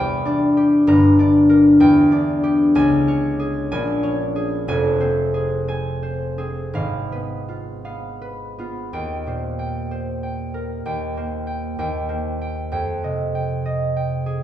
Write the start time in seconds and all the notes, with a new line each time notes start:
Already playing: E2 B3 G4 B4 G5
0.25 D4 D5
0.57 G4
0.87 G1 G2 A#5
1.19 D4 D5
1.49 A#4
1.80 E2 G5
2.12 D4 D5
2.43 G4
2.75 C#2 G#5
3.07 C#4 C#5
3.40 G#4
3.72 A#1 G#5
4.03 C#4 C#5
4.36 G#4
4.68 F1 F2 G#5
5.00 C4 C5
5.34 G#4
5.68 C4 G#5
6.03 C5
6.38 C4 G#4
6.73 G#1 G#2 F5
7.12 B3 B4
7.49 F4
7.85 B3 F5
8.22 B4
8.58 B3 F4
8.93 D#2 G5
9.27 A#2 C5
9.59 G5
9.91 C5
10.23 G5
10.54 A#4
10.85 D#2 G5
11.17 A#3 C5
11.47 G5
11.79 D#2 G5
12.09 A#3 C5
12.41 G5
12.72 F2 G5
13.04 C3 D#5
13.35 G5
13.66 D#5
13.96 G5
14.26 G#4